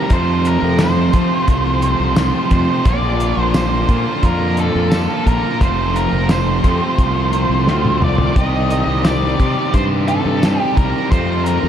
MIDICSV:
0, 0, Header, 1, 5, 480
1, 0, Start_track
1, 0, Tempo, 688073
1, 75, Time_signature, 4, 2, 24, 8
1, 8152, End_track
2, 0, Start_track
2, 0, Title_t, "Lead electric guitar"
2, 0, Program_c, 0, 29
2, 26, Note_on_c, 0, 70, 64
2, 75, Note_off_c, 0, 70, 0
2, 89, Note_on_c, 0, 72, 78
2, 327, Note_on_c, 0, 70, 76
2, 329, Note_off_c, 0, 72, 0
2, 566, Note_on_c, 0, 72, 79
2, 568, Note_off_c, 0, 70, 0
2, 1734, Note_off_c, 0, 72, 0
2, 1765, Note_on_c, 0, 72, 79
2, 2002, Note_off_c, 0, 72, 0
2, 2005, Note_on_c, 0, 74, 82
2, 2374, Note_off_c, 0, 74, 0
2, 2374, Note_on_c, 0, 72, 82
2, 2478, Note_off_c, 0, 72, 0
2, 2481, Note_on_c, 0, 72, 77
2, 2966, Note_on_c, 0, 70, 83
2, 2974, Note_off_c, 0, 72, 0
2, 3206, Note_off_c, 0, 70, 0
2, 3209, Note_on_c, 0, 69, 74
2, 3679, Note_off_c, 0, 69, 0
2, 3682, Note_on_c, 0, 70, 81
2, 3921, Note_on_c, 0, 72, 77
2, 3927, Note_off_c, 0, 70, 0
2, 4156, Note_on_c, 0, 70, 83
2, 4167, Note_off_c, 0, 72, 0
2, 4399, Note_on_c, 0, 72, 77
2, 4405, Note_off_c, 0, 70, 0
2, 5604, Note_off_c, 0, 72, 0
2, 5606, Note_on_c, 0, 74, 88
2, 5833, Note_off_c, 0, 74, 0
2, 5836, Note_on_c, 0, 75, 88
2, 6311, Note_off_c, 0, 75, 0
2, 6314, Note_on_c, 0, 74, 85
2, 6798, Note_on_c, 0, 72, 91
2, 6811, Note_off_c, 0, 74, 0
2, 6863, Note_off_c, 0, 72, 0
2, 7035, Note_on_c, 0, 69, 83
2, 7404, Note_off_c, 0, 69, 0
2, 7404, Note_on_c, 0, 67, 83
2, 7509, Note_off_c, 0, 67, 0
2, 7512, Note_on_c, 0, 70, 87
2, 7745, Note_off_c, 0, 70, 0
2, 7748, Note_on_c, 0, 72, 81
2, 7976, Note_off_c, 0, 72, 0
2, 7987, Note_on_c, 0, 70, 81
2, 8152, Note_off_c, 0, 70, 0
2, 8152, End_track
3, 0, Start_track
3, 0, Title_t, "Distorted electric guitar"
3, 0, Program_c, 1, 30
3, 71, Note_on_c, 1, 41, 75
3, 74, Note_on_c, 1, 48, 85
3, 78, Note_on_c, 1, 53, 85
3, 79, Note_on_c, 1, 57, 79
3, 83, Note_on_c, 1, 60, 87
3, 84, Note_on_c, 1, 65, 89
3, 779, Note_off_c, 1, 41, 0
3, 780, Note_off_c, 1, 48, 0
3, 783, Note_off_c, 1, 57, 0
3, 785, Note_off_c, 1, 60, 0
3, 793, Note_off_c, 1, 65, 0
3, 796, Note_on_c, 1, 65, 68
3, 799, Note_on_c, 1, 60, 73
3, 800, Note_off_c, 1, 53, 0
3, 803, Note_on_c, 1, 53, 61
3, 805, Note_on_c, 1, 57, 70
3, 809, Note_on_c, 1, 41, 55
3, 809, Note_on_c, 1, 48, 68
3, 1501, Note_off_c, 1, 41, 0
3, 1503, Note_off_c, 1, 60, 0
3, 1506, Note_off_c, 1, 48, 0
3, 1506, Note_off_c, 1, 57, 0
3, 1509, Note_on_c, 1, 41, 69
3, 1514, Note_off_c, 1, 53, 0
3, 1514, Note_on_c, 1, 48, 75
3, 1517, Note_on_c, 1, 53, 68
3, 1520, Note_on_c, 1, 57, 84
3, 1521, Note_off_c, 1, 65, 0
3, 1522, Note_on_c, 1, 60, 83
3, 1524, Note_on_c, 1, 65, 79
3, 1979, Note_off_c, 1, 41, 0
3, 1981, Note_off_c, 1, 48, 0
3, 1984, Note_off_c, 1, 57, 0
3, 1985, Note_off_c, 1, 60, 0
3, 1992, Note_on_c, 1, 46, 84
3, 1995, Note_off_c, 1, 53, 0
3, 1998, Note_on_c, 1, 50, 81
3, 2001, Note_on_c, 1, 58, 90
3, 2003, Note_off_c, 1, 65, 0
3, 2003, Note_on_c, 1, 62, 83
3, 2006, Note_on_c, 1, 65, 92
3, 2701, Note_off_c, 1, 46, 0
3, 2703, Note_off_c, 1, 50, 0
3, 2705, Note_off_c, 1, 58, 0
3, 2706, Note_off_c, 1, 62, 0
3, 2710, Note_off_c, 1, 65, 0
3, 2713, Note_on_c, 1, 65, 69
3, 2719, Note_on_c, 1, 62, 70
3, 2723, Note_on_c, 1, 58, 63
3, 2725, Note_on_c, 1, 50, 62
3, 2727, Note_on_c, 1, 46, 59
3, 3421, Note_off_c, 1, 65, 0
3, 3424, Note_off_c, 1, 62, 0
3, 3426, Note_off_c, 1, 46, 0
3, 3426, Note_off_c, 1, 58, 0
3, 3427, Note_off_c, 1, 50, 0
3, 3435, Note_on_c, 1, 46, 69
3, 3438, Note_on_c, 1, 50, 71
3, 3444, Note_on_c, 1, 58, 81
3, 3445, Note_on_c, 1, 62, 81
3, 3449, Note_on_c, 1, 65, 79
3, 3902, Note_off_c, 1, 46, 0
3, 3904, Note_off_c, 1, 50, 0
3, 3906, Note_off_c, 1, 58, 0
3, 3907, Note_off_c, 1, 62, 0
3, 3909, Note_off_c, 1, 65, 0
3, 3914, Note_on_c, 1, 41, 74
3, 3919, Note_on_c, 1, 48, 85
3, 3923, Note_on_c, 1, 53, 87
3, 3924, Note_on_c, 1, 57, 89
3, 3927, Note_on_c, 1, 60, 85
3, 3929, Note_on_c, 1, 65, 97
3, 4622, Note_off_c, 1, 41, 0
3, 4624, Note_off_c, 1, 48, 0
3, 4626, Note_off_c, 1, 53, 0
3, 4627, Note_off_c, 1, 57, 0
3, 4627, Note_off_c, 1, 65, 0
3, 4633, Note_off_c, 1, 60, 0
3, 4636, Note_on_c, 1, 60, 69
3, 4636, Note_on_c, 1, 65, 67
3, 4641, Note_on_c, 1, 57, 64
3, 4642, Note_on_c, 1, 53, 58
3, 4646, Note_on_c, 1, 48, 55
3, 4648, Note_on_c, 1, 41, 58
3, 5343, Note_off_c, 1, 65, 0
3, 5345, Note_off_c, 1, 57, 0
3, 5346, Note_off_c, 1, 53, 0
3, 5347, Note_off_c, 1, 41, 0
3, 5348, Note_off_c, 1, 48, 0
3, 5355, Note_on_c, 1, 41, 65
3, 5356, Note_on_c, 1, 48, 71
3, 5360, Note_on_c, 1, 53, 74
3, 5363, Note_off_c, 1, 60, 0
3, 5363, Note_on_c, 1, 57, 74
3, 5366, Note_on_c, 1, 60, 75
3, 5367, Note_on_c, 1, 65, 69
3, 5822, Note_off_c, 1, 41, 0
3, 5823, Note_off_c, 1, 48, 0
3, 5825, Note_off_c, 1, 53, 0
3, 5826, Note_off_c, 1, 57, 0
3, 5828, Note_off_c, 1, 65, 0
3, 5831, Note_on_c, 1, 48, 79
3, 5832, Note_on_c, 1, 51, 82
3, 5837, Note_on_c, 1, 55, 88
3, 5839, Note_off_c, 1, 60, 0
3, 5841, Note_on_c, 1, 60, 90
3, 5843, Note_on_c, 1, 67, 89
3, 6540, Note_off_c, 1, 48, 0
3, 6541, Note_off_c, 1, 51, 0
3, 6543, Note_off_c, 1, 55, 0
3, 6546, Note_off_c, 1, 67, 0
3, 6555, Note_on_c, 1, 67, 68
3, 6559, Note_off_c, 1, 60, 0
3, 6561, Note_on_c, 1, 60, 73
3, 6563, Note_on_c, 1, 55, 59
3, 6569, Note_on_c, 1, 51, 59
3, 6570, Note_on_c, 1, 48, 59
3, 7263, Note_off_c, 1, 67, 0
3, 7266, Note_off_c, 1, 55, 0
3, 7266, Note_off_c, 1, 60, 0
3, 7269, Note_off_c, 1, 51, 0
3, 7270, Note_off_c, 1, 48, 0
3, 7277, Note_on_c, 1, 48, 62
3, 7281, Note_on_c, 1, 51, 67
3, 7288, Note_on_c, 1, 55, 74
3, 7288, Note_on_c, 1, 60, 83
3, 7293, Note_on_c, 1, 67, 75
3, 7744, Note_off_c, 1, 48, 0
3, 7745, Note_off_c, 1, 51, 0
3, 7749, Note_off_c, 1, 55, 0
3, 7749, Note_off_c, 1, 60, 0
3, 7752, Note_off_c, 1, 67, 0
3, 7757, Note_on_c, 1, 41, 77
3, 7758, Note_on_c, 1, 48, 80
3, 7762, Note_on_c, 1, 53, 81
3, 7765, Note_on_c, 1, 57, 83
3, 7768, Note_on_c, 1, 60, 92
3, 7768, Note_on_c, 1, 65, 87
3, 8152, Note_off_c, 1, 41, 0
3, 8152, Note_off_c, 1, 48, 0
3, 8152, Note_off_c, 1, 53, 0
3, 8152, Note_off_c, 1, 57, 0
3, 8152, Note_off_c, 1, 60, 0
3, 8152, Note_off_c, 1, 65, 0
3, 8152, End_track
4, 0, Start_track
4, 0, Title_t, "Fingered electric bass"
4, 0, Program_c, 2, 33
4, 71, Note_on_c, 2, 41, 85
4, 395, Note_off_c, 2, 41, 0
4, 434, Note_on_c, 2, 41, 80
4, 757, Note_off_c, 2, 41, 0
4, 794, Note_on_c, 2, 53, 75
4, 902, Note_off_c, 2, 53, 0
4, 1033, Note_on_c, 2, 36, 84
4, 1356, Note_off_c, 2, 36, 0
4, 1392, Note_on_c, 2, 36, 85
4, 1609, Note_off_c, 2, 36, 0
4, 1748, Note_on_c, 2, 41, 81
4, 1859, Note_off_c, 2, 41, 0
4, 1992, Note_on_c, 2, 34, 86
4, 2316, Note_off_c, 2, 34, 0
4, 2351, Note_on_c, 2, 34, 81
4, 2676, Note_off_c, 2, 34, 0
4, 2713, Note_on_c, 2, 46, 82
4, 2823, Note_off_c, 2, 46, 0
4, 2948, Note_on_c, 2, 41, 82
4, 3275, Note_off_c, 2, 41, 0
4, 3316, Note_on_c, 2, 41, 87
4, 3532, Note_off_c, 2, 41, 0
4, 3670, Note_on_c, 2, 34, 80
4, 3781, Note_off_c, 2, 34, 0
4, 3912, Note_on_c, 2, 29, 85
4, 4237, Note_off_c, 2, 29, 0
4, 4272, Note_on_c, 2, 29, 79
4, 4597, Note_off_c, 2, 29, 0
4, 4630, Note_on_c, 2, 41, 79
4, 4741, Note_off_c, 2, 41, 0
4, 4871, Note_on_c, 2, 36, 78
4, 5196, Note_off_c, 2, 36, 0
4, 5229, Note_on_c, 2, 36, 86
4, 5337, Note_off_c, 2, 36, 0
4, 5341, Note_on_c, 2, 38, 77
4, 5565, Note_off_c, 2, 38, 0
4, 5584, Note_on_c, 2, 36, 77
4, 5806, Note_off_c, 2, 36, 0
4, 5833, Note_on_c, 2, 36, 84
4, 6157, Note_off_c, 2, 36, 0
4, 6184, Note_on_c, 2, 36, 82
4, 6513, Note_off_c, 2, 36, 0
4, 6555, Note_on_c, 2, 48, 83
4, 6664, Note_off_c, 2, 48, 0
4, 6792, Note_on_c, 2, 43, 89
4, 7117, Note_off_c, 2, 43, 0
4, 7153, Note_on_c, 2, 43, 85
4, 7370, Note_off_c, 2, 43, 0
4, 7513, Note_on_c, 2, 36, 84
4, 7623, Note_off_c, 2, 36, 0
4, 7755, Note_on_c, 2, 41, 90
4, 8079, Note_off_c, 2, 41, 0
4, 8116, Note_on_c, 2, 41, 81
4, 8152, Note_off_c, 2, 41, 0
4, 8152, End_track
5, 0, Start_track
5, 0, Title_t, "Drums"
5, 70, Note_on_c, 9, 42, 80
5, 74, Note_on_c, 9, 36, 101
5, 140, Note_off_c, 9, 42, 0
5, 143, Note_off_c, 9, 36, 0
5, 314, Note_on_c, 9, 42, 62
5, 384, Note_off_c, 9, 42, 0
5, 548, Note_on_c, 9, 42, 71
5, 548, Note_on_c, 9, 54, 89
5, 550, Note_on_c, 9, 38, 94
5, 618, Note_off_c, 9, 42, 0
5, 618, Note_off_c, 9, 54, 0
5, 619, Note_off_c, 9, 38, 0
5, 790, Note_on_c, 9, 42, 63
5, 793, Note_on_c, 9, 36, 75
5, 860, Note_off_c, 9, 42, 0
5, 863, Note_off_c, 9, 36, 0
5, 1031, Note_on_c, 9, 42, 78
5, 1033, Note_on_c, 9, 36, 82
5, 1101, Note_off_c, 9, 42, 0
5, 1102, Note_off_c, 9, 36, 0
5, 1271, Note_on_c, 9, 42, 60
5, 1341, Note_off_c, 9, 42, 0
5, 1509, Note_on_c, 9, 42, 81
5, 1509, Note_on_c, 9, 54, 95
5, 1511, Note_on_c, 9, 38, 104
5, 1579, Note_off_c, 9, 42, 0
5, 1579, Note_off_c, 9, 54, 0
5, 1580, Note_off_c, 9, 38, 0
5, 1749, Note_on_c, 9, 42, 57
5, 1752, Note_on_c, 9, 36, 80
5, 1818, Note_off_c, 9, 42, 0
5, 1822, Note_off_c, 9, 36, 0
5, 1990, Note_on_c, 9, 42, 75
5, 1992, Note_on_c, 9, 36, 98
5, 2060, Note_off_c, 9, 42, 0
5, 2062, Note_off_c, 9, 36, 0
5, 2233, Note_on_c, 9, 42, 56
5, 2303, Note_off_c, 9, 42, 0
5, 2471, Note_on_c, 9, 42, 71
5, 2471, Note_on_c, 9, 54, 100
5, 2473, Note_on_c, 9, 38, 92
5, 2541, Note_off_c, 9, 42, 0
5, 2541, Note_off_c, 9, 54, 0
5, 2542, Note_off_c, 9, 38, 0
5, 2712, Note_on_c, 9, 36, 74
5, 2714, Note_on_c, 9, 42, 51
5, 2782, Note_off_c, 9, 36, 0
5, 2783, Note_off_c, 9, 42, 0
5, 2950, Note_on_c, 9, 42, 70
5, 2952, Note_on_c, 9, 36, 79
5, 3019, Note_off_c, 9, 42, 0
5, 3022, Note_off_c, 9, 36, 0
5, 3188, Note_on_c, 9, 42, 57
5, 3258, Note_off_c, 9, 42, 0
5, 3429, Note_on_c, 9, 42, 80
5, 3429, Note_on_c, 9, 54, 106
5, 3430, Note_on_c, 9, 38, 94
5, 3499, Note_off_c, 9, 42, 0
5, 3499, Note_off_c, 9, 54, 0
5, 3500, Note_off_c, 9, 38, 0
5, 3674, Note_on_c, 9, 36, 83
5, 3675, Note_on_c, 9, 42, 57
5, 3743, Note_off_c, 9, 36, 0
5, 3745, Note_off_c, 9, 42, 0
5, 3914, Note_on_c, 9, 36, 105
5, 3916, Note_on_c, 9, 42, 83
5, 3984, Note_off_c, 9, 36, 0
5, 3986, Note_off_c, 9, 42, 0
5, 4157, Note_on_c, 9, 42, 62
5, 4226, Note_off_c, 9, 42, 0
5, 4389, Note_on_c, 9, 42, 76
5, 4389, Note_on_c, 9, 54, 98
5, 4390, Note_on_c, 9, 38, 92
5, 4458, Note_off_c, 9, 42, 0
5, 4458, Note_off_c, 9, 54, 0
5, 4460, Note_off_c, 9, 38, 0
5, 4633, Note_on_c, 9, 36, 75
5, 4633, Note_on_c, 9, 42, 61
5, 4702, Note_off_c, 9, 42, 0
5, 4703, Note_off_c, 9, 36, 0
5, 4873, Note_on_c, 9, 36, 76
5, 4873, Note_on_c, 9, 42, 76
5, 4942, Note_off_c, 9, 36, 0
5, 4942, Note_off_c, 9, 42, 0
5, 5113, Note_on_c, 9, 42, 57
5, 5183, Note_off_c, 9, 42, 0
5, 5354, Note_on_c, 9, 38, 52
5, 5423, Note_off_c, 9, 38, 0
5, 5474, Note_on_c, 9, 48, 51
5, 5544, Note_off_c, 9, 48, 0
5, 5596, Note_on_c, 9, 45, 71
5, 5665, Note_off_c, 9, 45, 0
5, 5709, Note_on_c, 9, 43, 71
5, 5779, Note_off_c, 9, 43, 0
5, 5833, Note_on_c, 9, 36, 102
5, 5833, Note_on_c, 9, 42, 79
5, 5902, Note_off_c, 9, 42, 0
5, 5903, Note_off_c, 9, 36, 0
5, 6072, Note_on_c, 9, 42, 56
5, 6142, Note_off_c, 9, 42, 0
5, 6310, Note_on_c, 9, 42, 70
5, 6310, Note_on_c, 9, 54, 96
5, 6312, Note_on_c, 9, 38, 95
5, 6380, Note_off_c, 9, 42, 0
5, 6380, Note_off_c, 9, 54, 0
5, 6381, Note_off_c, 9, 38, 0
5, 6555, Note_on_c, 9, 36, 72
5, 6557, Note_on_c, 9, 42, 56
5, 6625, Note_off_c, 9, 36, 0
5, 6627, Note_off_c, 9, 42, 0
5, 6793, Note_on_c, 9, 42, 73
5, 6795, Note_on_c, 9, 36, 82
5, 6863, Note_off_c, 9, 42, 0
5, 6865, Note_off_c, 9, 36, 0
5, 7031, Note_on_c, 9, 42, 54
5, 7101, Note_off_c, 9, 42, 0
5, 7275, Note_on_c, 9, 42, 75
5, 7275, Note_on_c, 9, 54, 97
5, 7277, Note_on_c, 9, 38, 102
5, 7345, Note_off_c, 9, 42, 0
5, 7345, Note_off_c, 9, 54, 0
5, 7346, Note_off_c, 9, 38, 0
5, 7515, Note_on_c, 9, 36, 85
5, 7515, Note_on_c, 9, 42, 56
5, 7585, Note_off_c, 9, 36, 0
5, 7585, Note_off_c, 9, 42, 0
5, 7756, Note_on_c, 9, 36, 104
5, 7758, Note_on_c, 9, 42, 75
5, 7825, Note_off_c, 9, 36, 0
5, 7828, Note_off_c, 9, 42, 0
5, 7996, Note_on_c, 9, 42, 61
5, 8066, Note_off_c, 9, 42, 0
5, 8152, End_track
0, 0, End_of_file